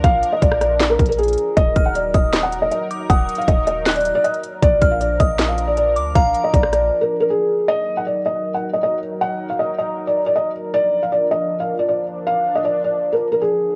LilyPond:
<<
  \new Staff \with { instrumentName = "Synth bell" } { \time 4/4 \key ees \minor \tempo 4 = 157 r1 | r8 f'''4 ees'''2 d'''8 | ees'''2 ges'''2 | r8 f'''4 ees'''2 d'''8 |
bes''2 r2 | r1 | r1 | r1 |
r1 | }
  \new Staff \with { instrumentName = "Felt piano" } { \time 4/4 \key ees \minor f''8. ees''16 d''8 d''8. bes'8 bes'16 aes'4 | ees''8. ges''16 d''8 ees''8. ges''8 ees''16 ees''8 r8 | ges''8. f''16 ees''8 ees''8. d''8 d''16 ees''8 r8 | d''8. f''16 d''8 ees''8. f''8 d''16 d''8 r8 |
f''8. ees''16 d''8 d''8. bes'8 bes'16 aes'4 | ees''8. ges''16 d''8 ees''8. ges''8 ees''16 ees''8 r8 | ges''8. f''16 ees''8 ees''8. d''8 d''16 ees''8 r8 | d''8. f''16 d''8 ees''8. f''8 d''16 d''8 r8 |
f''8. ees''16 d''8 d''8. bes'8 bes'16 aes'4 | }
  \new Staff \with { instrumentName = "Analog synth pad" } { \time 4/4 \key ees \minor << { bes'1 | bes'1~ | bes'1 | bes'1~ |
bes'1 | bes'1~ | bes'1~ | bes'1~ |
bes'1 | } \\ { <f d'>1 | <ges ees'>1~ | <ges ees'>1 | <f d'>1~ |
<f d'>1 | <ges ees'>1~ | <ges ees'>1 | <f d'>1~ |
<f d'>1 | } >> }
  \new Staff \with { instrumentName = "808-style bass" } { \clef bass \time 4/4 \key ees \minor bes,,8 r8 bes,,4. bes,,4 r8 | ees,,8 ees,,4 ees,,4. r4 | ees,,8 r8 ees,,4.~ ees,,16 r4 r16 | bes,,8 bes,,4 bes,,2 d,8 |
bes,,8 r8 bes,,4 r2 | r1 | r1 | r1 |
r1 | }
  \new DrumStaff \with { instrumentName = "Drums" } \drummode { \time 4/4 <hh bd>8 hh8 <hh bd>16 ss16 <hh ss>8 \tuplet 3/2 { <hc hh sn>16 r16 r16 <hh bd>16 hh16 hh16 } hh32 hh32 hh32 hh32 hh8 | <hh bd>8 <hh bd>8 hh8 <hh bd>8 <hc hh sn>8 hh8 hh8 hh8 | \tuplet 3/2 { <hh bd>16 r16 r16 hh16 hh16 hh16 } <hh bd>8 hh8 <hc hh sn>32 hh32 hh32 hh32 hh8 hh16 hh16 hh8 | <hh bd>8 <hh bd>8 hh8 <hh bd>8 <hc hh sn>8 hh8 hh8 hh8 |
<hh bd>8 hh8 <hh bd>16 ss16 <hh ss>8 r4 r4 | r4 r4 r4 r4 | r4 r4 r4 r4 | r4 r4 r4 r4 |
r4 r4 r4 r4 | }
>>